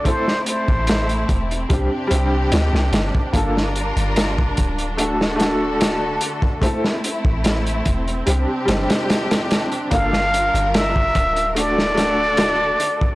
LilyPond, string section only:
\new Staff \with { instrumentName = "String section" } { \time 4/4 \key g \dorian \tempo 4 = 73 <a c' e'>2 <c d' g'>2 | <g f' bes'>2 <d fis' a'>2 | <a c' e'>2 <c d' g'>2 | <g f' bes'>2 <d d' fis' a'>2 | }